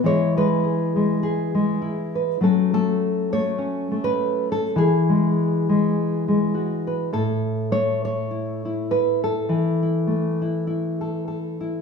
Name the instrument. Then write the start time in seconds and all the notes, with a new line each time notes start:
nylon-string guitar
0.04 E3 G#3 E4 G#4 C#5
0.37 G#3 B4
0.64 G#4
0.96 G#3
1.23 G#4
1.55 G#3
1.82 E4
2.15 B4
2.41 F#3 A3 C#4 F#4 A4
2.73 A3 A4
3.33 A3 C#5
3.58 C#4
3.91 A3
4.04 B4
4.52 A4
4.76 E3 G#4
5.09 G#3
5.69 G#3
6.28 G#3
6.55 F#4
6.87 B4
7.13 A2 A4
7.71 A3 C#5
8.05 C#5
8.31 E4
8.65 E4
8.91 B4
9.24 A4
9.49 E3
9.83 E4
10.07 A3
10.42 E4
10.67 E4
11.01 A4
11.28 A4
11.61 E4